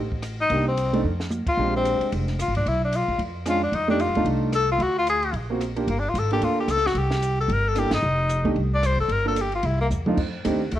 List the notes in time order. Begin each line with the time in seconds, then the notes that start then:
Already playing: A1
0.12 kick
0.23 cross-stick, hi-hat pedal, ride
0.41 D#4
0.50 C2 A#3 D4 D#4 G4, ride
0.68 C4
0.78 hi-hat pedal, ride
0.93 A3 D4 D#4 A4, ride
1.04 F2
1.20 snare
1.31 hi-hat pedal, high tom
1.47 F4, muted upright bass stroke, kick, ride
1.57 A#1 G#3 C4 D4 G4
1.76 C4
1.85 hi-hat pedal, ride
2.00 muted upright bass stroke, ride
2.12 F1, ride
2.28 snare, ride
2.39 F4, cross-stick, hi-hat pedal, ride
2.48 G#1
2.55 A#1 D4, ride
2.66 B1 E4, ride
2.85 D4
2.93 F4, hi-hat pedal, ride
3.08 A#1
3.19 F2, ride
3.46 G#3 C#4 D4 F4, cross-stick, hi-hat pedal, ride
3.63 D4
3.72 F2 D#4, ride
3.88 A3 D4 D#4 G4
4.00 F4, hi-hat pedal, ride
4.08 G2
4.15 D#2 A3 D4 D#4 F4, ride
4.25 C2, ride
4.53 A4, cross-stick, hi-hat pedal, ride
4.71 F4
4.79 D2 F#4, ride
4.98 F4
5.07 G#4, hi-hat pedal, ride
5.23 ride
5.33 A#1, ride
5.50 A#3 C4 F4 F#4
5.61 cross-stick, hi-hat pedal, ride
5.76 A#3 D4 F4 G4, ride
5.87 G1 A#3, ride
5.99 D4
6.10 F4
6.14 G#1, hi-hat pedal, ride
6.18 A4
6.30 A#3 D4 F4 G4 A4, ride
6.41 D2 F4, ride
6.60 G4
6.68 C#2 A4, cross-stick, hi-hat pedal, ride
6.77 snare
6.86 F#4, snare
6.94 C2, ride
6.99 G4
7.11 snare
7.22 hi-hat pedal, ride
7.41 A4
7.48 G1, ride
7.53 A#4
7.68 A4
7.75 A#3 D4 E4 G4 A4, cross-stick, hi-hat pedal, ride
7.91 G1 D#4, snare, ride
8.02 F1
8.29 hi-hat pedal, ride
8.44 C2 A3 D4 D#4 G4, ride
8.55 C2, ride
8.74 D5
8.83 C5, cross-stick, hi-hat pedal, ride
8.97 F#1 A4
9.08 G1 A#4, ride
9.25 A#3 D4 F4 A4
9.36 hi-hat pedal, ride
9.41 G4
9.52 F4, ride
9.63 C2 E4, ride
9.81 A#3
9.91 E2, hi-hat pedal
10.06 F2 A3 D4 D#4 F4, mid tom
10.17 F2, kick, crash
10.45 D#2 A3 C4 D4 D#4 G4, hi-hat pedal, ride
10.71 D2, ride
10.76 A3